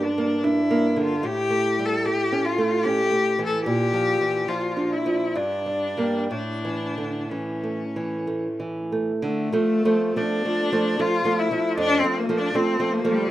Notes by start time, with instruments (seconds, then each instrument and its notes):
Already playing: nylon-string guitar G2 D4
0.03 cello D4
0.18 nylon-string guitar A#3
0.43 nylon-string guitar D4, cello E4
0.71 nylon-string guitar A#3
0.96 nylon-string guitar D3
1.04 cello F4
1.23 nylon-string guitar A2, cello G4
1.50 nylon-string guitar A3
1.79 nylon-string guitar G3
1.85 cello A4
2.06 nylon-string guitar A3, cello G4
2.32 nylon-string guitar C#4
2.45 cello F4
2.58 nylon-string guitar A3
2.83 nylon-string guitar C#4, cello G4
3.11 nylon-string guitar A3
3.39 nylon-string guitar E3
3.46 cello A4
3.65 nylon-string guitar A#2, cello G4
3.93 nylon-string guitar F3
4.21 nylon-string guitar E3
4.48 nylon-string guitar F3, cello F4
4.77 nylon-string guitar D4
4.93 cello E4
5.06 nylon-string guitar F3
5.35 nylon-string guitar G2, cello D4
5.66 nylon-string guitar G3
5.97 nylon-string guitar G3 A#3
6.31 nylon-string guitar A2, cello D4
6.65 nylon-string guitar E3
6.98 nylon-string guitar D3
7.29 nylon-string guitar E3, cello C#4
7.64 nylon-string guitar A3
7.96 nylon-string guitar E3
8.27 nylon-string guitar A3
8.60 nylon-string guitar E3
8.92 nylon-string guitar A3
9.22 nylon-string guitar D3, cello A3
9.53 nylon-string guitar F3 A3
9.85 nylon-string guitar F3 A3
10.16 nylon-string guitar F3 A3, cello D4
10.45 nylon-string guitar F3 A3
10.72 nylon-string guitar F3 A3
10.99 nylon-string guitar F3 A3, cello F4
11.25 nylon-string guitar F3 A3
11.39 cello E4
11.51 nylon-string guitar F3 A3
11.77 nylon-string guitar F2, cello D4
11.99 cello C4
12.04 nylon-string guitar F3 A3
12.17 cello A#3
12.29 nylon-string guitar F3 A3
12.37 cello D4
12.54 nylon-string guitar F3 A3, cello C4
12.80 nylon-string guitar F3 A3
12.92 cello A#3
13.04 nylon-string guitar F3 A3
13.11 cello G3